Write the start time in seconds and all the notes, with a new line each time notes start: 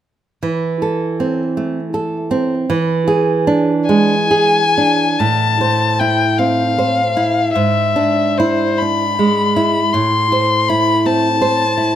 0.43 E3
0.82 A4
1.20 C4
1.57 A3
1.94 A4
2.31 C4
2.70 E3
3.08 G#4
3.47 D4
3.87 G#3 G#5
4.31 G#4
4.78 D4
5.19 A2 A5
5.61 C5
5.99 E4 G5
6.38 C4 F5
6.78 C5
7.17 E4
7.53 G#2 E5
7.96 D4
8.38 E4 C5
8.78 D4 B5
9.19 G#3
9.56 E4
9.93 A2 C6
10.32 C5
10.68 E4 B5
11.06 C4 A5
11.41 C5
11.78 E4